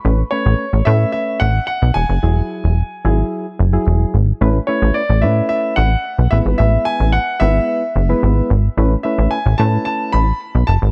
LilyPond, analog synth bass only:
\new Staff \with { instrumentName = "Analog synth bass" } { \clef bass \time 4/4 \key a \major \tempo 4 = 110 a,,8 r16 a,,16 r16 a,,16 a,8 r8 a,,8 r16 b,,16 e,,16 fis,,16 | e,,8 r16 e,,8 r16 gis,,8 r8 fis,,8 e,,8 gis,,8 | a,,8 r16 a,,16 r16 a,,16 a,8 r8 a,,8 r16 b,,16 a,,16 gis,,16 | a,,8 r16 a,,8 r16 gis,,8 r8 fis,,8 gis,,8 gis,,8 |
a,,8 r16 a,,16 r16 a,,16 a,8 r8 a,,8 r16 b,,16 fis,,16 gis,,16 | }